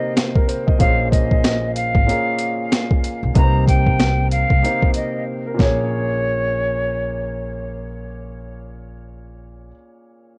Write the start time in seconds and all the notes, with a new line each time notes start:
Already playing: C3 A#3 D#4 G4 C5 D#5
0.17 snare, closed hi-hat
0.36 A#4, kick
0.48 C5, closed hi-hat
0.67 D#5, kick
0.79 A#1 A#2 A#3 C#4 G#4 C5 F5, kick, closed hi-hat
1.12 D#5, kick, closed hi-hat
1.31 kick
1.44 snare, closed hi-hat
1.76 F5, closed hi-hat
1.95 G#1, kick
2.07 A#2 A#3 C#4 G#4 A#4, closed hi-hat
2.39 closed hi-hat
2.72 snare, closed hi-hat
2.91 kick
3.04 closed hi-hat
3.23 B1
3.35 C2 C3 A#3 D#4 G4 B4 A#5, kick, closed hi-hat
3.44 C5
3.68 G5, kick, closed hi-hat
3.87 kick
4.00 snare, closed hi-hat
4.31 F5, closed hi-hat
4.50 C2, kick
4.62 C3 A#3 D#4 G4 C5, closed hi-hat
4.83 kick
4.94 D#5, closed hi-hat
5.46 A#4
5.54 A#2 A#3
5.59 A#1 C#4 G#4 C#5, kick, snare
5.64 C#5